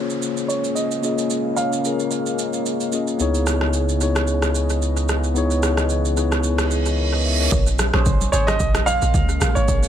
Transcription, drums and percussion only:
0.10 shaker medium
0.22 shaker medium
0.37 shaker medium
0.50 shaker medium
0.64 shaker medium
0.76 shaker medium
0.91 shaker medium
1.03 shaker medium
1.18 shaker medium
1.30 shaker medium
1.57 shaker medium
1.73 shaker medium
1.85 shaker medium
2.00 shaker medium
2.11 shaker medium
2.26 shaker medium
2.39 shaker medium
2.53 shaker medium
2.66 shaker medium
2.80 shaker medium
2.92 shaker medium
3.07 shaker medium
3.20 shaker medium
3.34 shaker medium
3.47 cross-stick medium
3.47 shaker medium
3.61 cross-stick medium
3.73 shaker medium
3.89 shaker medium
4.01 shaker medium
4.16 cross-stick loud
4.16 shaker medium
4.27 shaker medium
4.42 cross-stick medium
4.42 shaker medium
4.55 shaker medium
4.70 shaker medium
4.82 shaker medium
4.97 shaker medium
5.09 cross-stick medium
5.09 shaker medium
5.24 shaker soft
5.36 shaker medium
5.51 shaker medium
5.63 cross-stick medium
5.63 shaker medium
5.77 cross-stick medium
5.77 shaker medium
5.90 shaker medium
6.05 shaker medium
6.17 shaker medium
6.32 cross-stick medium
6.32 shaker medium
6.43 shaker medium
6.58 cross-stick loud
6.58 shaker medium
6.71 shaker medium
6.86 shaker medium
7.52 kick loud
7.52 shaker medium
7.67 shaker medium
7.79 cross-stick medium
7.79 high conga medium
7.79 shaker medium
7.94 cross-stick loud
7.94 high conga medium
8.06 kick loud
8.06 low conga medium
8.06 shaker medium
8.21 high conga medium
8.21 shaker medium
8.33 low conga medium
8.33 shaker loud
8.48 cross-stick loud
8.48 high conga medium
8.48 shaker medium
8.60 kick loud
8.60 shaker medium
8.75 cross-stick loud
8.75 high conga medium
8.75 shaker medium
8.87 high conga medium
8.87 shaker medium
9.02 shaker medium
9.14 kick loud
9.14 low conga medium
9.14 shaker medium
9.29 shaker medium
9.41 cross-stick loud
9.41 high conga medium
9.41 low conga medium
9.41 shaker medium
9.56 shaker medium
9.68 kick loud
9.68 shaker medium
9.83 shaker medium

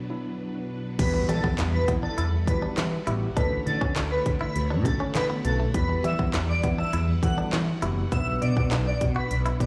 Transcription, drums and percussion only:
0.99 kick loud
0.99 closed hi-hat loud
0.99 crash loud
1.29 closed hi-hat medium
1.44 kick loud
1.58 snare loud
1.58 clap loud
1.58 closed hi-hat loud
1.88 kick loud
1.88 closed hi-hat medium
2.18 closed hi-hat loud
2.47 kick loud
2.47 closed hi-hat medium
2.77 snare loud
2.77 clap loud
2.77 closed hi-hat medium
3.07 closed hi-hat medium
3.37 kick loud
3.37 closed hi-hat loud
3.67 closed hi-hat medium
3.81 kick loud
3.96 snare loud
3.96 clap loud
3.96 closed hi-hat medium
4.26 kick loud
4.26 closed hi-hat medium
4.56 closed hi-hat loud
4.85 kick loud
4.85 closed hi-hat medium
5.15 snare loud
5.15 clap loud
5.15 closed hi-hat medium
5.45 closed hi-hat medium
5.74 kick loud
5.74 closed hi-hat loud
6.04 closed hi-hat medium
6.19 kick loud
6.34 snare medium
6.34 clap loud
6.34 closed hi-hat loud
6.63 kick loud
6.63 closed hi-hat medium
6.93 closed hi-hat medium
7.23 kick loud
7.23 closed hi-hat medium
7.53 snare loud
7.53 clap loud
7.53 closed hi-hat medium
7.82 closed hi-hat medium
8.12 kick loud
8.12 closed hi-hat loud
8.42 closed hi-hat medium
8.57 kick loud
8.71 snare loud
8.71 clap loud
8.71 closed hi-hat loud
9.01 kick loud
9.01 closed hi-hat medium
9.31 closed hi-hat loud
9.46 closed hi-hat medium
9.60 kick loud
9.60 closed hi-hat medium

